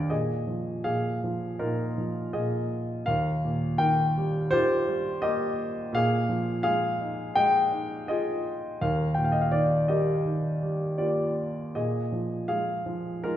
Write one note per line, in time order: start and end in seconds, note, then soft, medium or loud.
0.00 0.11 D#2 medium
0.00 0.11 D3 medium
0.00 0.12 D#3 medium
0.00 0.12 G3 soft
0.00 0.12 G4 medium
0.00 0.12 A#4 medium
0.00 0.13 D5 medium
0.00 0.10 D#5 medium
0.10 0.84 A#2 soft
0.10 0.83 G#4 soft
0.10 0.88 D#5 medium
0.47 1.22 F3 soft
0.84 1.60 A#2 soft
0.84 2.29 G#4 medium
0.84 1.62 F5 medium
1.24 1.96 F3 soft
1.59 2.33 A#2 soft
1.59 3.03 D#4 medium
1.59 3.03 F4 medium
1.59 2.29 A#4 medium
1.98 3.04 F3 soft
2.33 3.05 A#2 soft
2.33 3.03 G#4 soft
2.33 3.09 D#5 medium
3.06 5.90 D#2 medium
3.06 3.77 A#4 medium
3.06 3.82 F5 medium
3.44 4.83 A#2 soft
3.78 4.52 D#3 medium
3.78 5.17 A#4 medium
3.78 4.53 G5 medium
4.18 4.87 G3 soft
4.51 5.90 D#3 medium
4.51 5.89 F4 medium
4.51 5.21 G4 medium
4.51 5.24 C5 loud
4.88 5.91 G3 soft
5.22 5.92 A#3 medium
5.22 5.89 G4 medium
5.22 5.90 A#4 medium
5.22 5.95 D#5 medium
5.93 8.76 A#2 medium
5.93 6.62 G#4 medium
5.93 6.61 F5 loud
6.29 7.68 F3 soft
6.63 7.34 G#3 medium
6.63 8.04 G#4 medium
6.63 7.37 F5 medium
7.01 7.70 D#4 soft
7.35 8.77 G#3 medium
7.35 8.07 D#5 medium
7.35 8.10 G5 loud
7.72 8.77 D#4 soft
8.08 8.79 F4 medium
8.08 8.78 G#4 medium
8.08 8.83 D#5 medium
8.81 11.72 D#2 medium
8.81 9.88 A#4 medium
8.81 9.15 F5 medium
9.14 10.59 A#2 soft
9.14 9.25 G5 medium
9.24 9.34 F5 medium
9.32 9.42 D#5 medium
9.41 9.51 F5 medium
9.52 10.23 D#3 soft
9.52 9.89 D5 medium
9.88 10.61 G3 soft
9.88 10.97 G4 soft
9.88 11.34 A#4 soft
9.88 11.03 D#5 medium
10.25 11.72 D#3 soft
10.62 11.73 G3 soft
10.98 11.74 A#3 soft
10.98 11.71 F4 soft
10.98 11.71 G4 soft
10.98 11.77 D5 medium
11.75 13.37 A#2 medium
11.75 12.47 G#4 soft
11.75 12.52 D#5 medium
12.12 12.85 F3 soft
12.48 13.22 G#3 soft
12.48 13.37 G#4 medium
12.48 13.25 F5 medium
12.86 13.37 F3 soft
13.24 13.37 G#3 soft
13.24 13.37 D#4 soft
13.24 13.37 F4 medium
13.24 13.37 A#4 medium